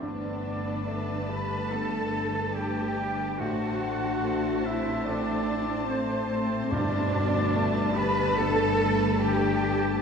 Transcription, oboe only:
\new Staff \with { instrumentName = "Oboe" } { \time 4/4 \key g \major \tempo 4 = 72 d''4. b''8 a''4 g''4 | fis''4. e''8 d''4 c''8 c''8 | d''4. b''8 a''8 r8 g''4 | }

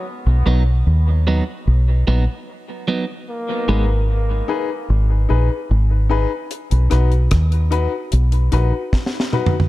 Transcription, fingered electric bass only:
\new Staff \with { instrumentName = "Fingered electric bass" } { \clef bass \time 4/4 \key b \major \tempo 4 = 74 r16 b,,16 b,,8 dis,8. r16 b,,8 ais,,16 r4 r16 | r8 gis,,4 r8 gis,,8 ais,,16 r16 gis,,8. r16 | r16 b,,16 b,,8 dis,8. r16 b,,8 ais,,16 r4 r16 | }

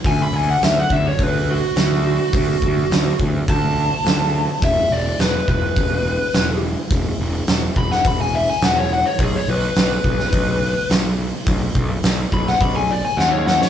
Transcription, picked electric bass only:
\new Staff \with { instrumentName = "Picked electric bass" } { \clef bass \time 4/4 \key e \mixolydian \tempo 4 = 105 d,8 d,8 d,8 d,8 d,4 d,4 | d,8 d,8 d,8 d,8 d,4 d,4 | e,,8 e,,8 e,,8 e,,8 e,,4 e,,4 | e,,8 e,,8 e,,8 e,,8 e,,4 e,,4 |
b,,8 b,,8 b,,8 b,,8 b,,4 b,,4 | b,,8 b,,8 b,,8 b,,8 b,,4 dis,4 | }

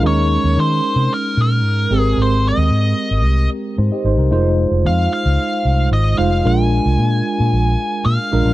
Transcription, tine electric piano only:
\new Staff \with { instrumentName = "Tine electric piano" } { \time 4/4 \key aes \major \tempo 4 = 112 << { r1 | r2. <ees' c''>16 <g' ees''>16 <ees' c''>16 bes'16~ | bes'16 r2. r8. | r1 | } \\ { <aes des' ees' bes'>4. r2 <aes c' g' a' bes'>8~ | <aes c' g' a' bes'>4 r2. | <aes ees' f' c''>4. r2 <aes ees' f' c''>8 | <aes d' f' bes'>4. r2 <aes d' f' bes'>8 | } >> }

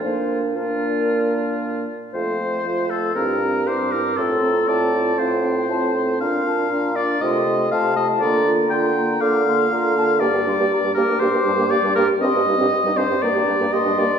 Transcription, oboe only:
\new Staff \with { instrumentName = "Oboe" } { \time 4/4 \key bes \major \tempo 4 = 119 f'4 f'2~ f'8 r8 | \key f \major c''4. a'8 bes'4 c''8 bes'8 | a'4 d''4 c''2 | f''4. d''8 ees''4 f''8 ees''8 |
d''8 r8 g''4 f''2 | \key g \minor d''4. bes'8 c''4 d''8 bes'8 | ees''4. c''8 d''4 ees''8 d''8 | }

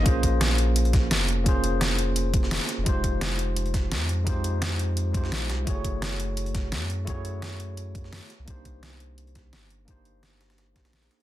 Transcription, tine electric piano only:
\new Staff \with { instrumentName = "Tine electric piano" } { \time 4/4 \key bes \dorian \tempo 4 = 171 <bes des' f' aes' c''>2. r4 | <bes des' f' aes' c''>2. r4 | <aes ees' f' g' c''>2. r4 | <aes ees' f' g' c''>2~ <aes ees' f' g' c''>8 <aes ees' f' g' c''>4. |
<a fes' ges' aes' des''>2. r4 | <a fes' ges' aes' des''>2. r4 | <bes d' ees' g' c''>2. r4 | <bes d' ees' g' c''>2~ <bes d' ees' g' c''>8 <bes d' ees' g' c''>4. | }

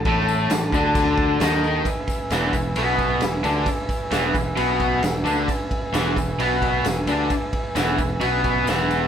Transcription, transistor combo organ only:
\new Staff \with { instrumentName = "Transistor combo organ" } { \time 4/4 \key e \mixolydian \tempo 4 = 132 << { r1 | r1 | r2 r8 fis''8 gis''8 b''8 | r1 |
r2 r8 e''8 gis''4 | } \\ { <a' a''>1 | <b' e'' gis''>1~ | <b' e'' gis''>1 | <b' e'' gis''>1~ |
<b' e'' gis''>1 | } >> }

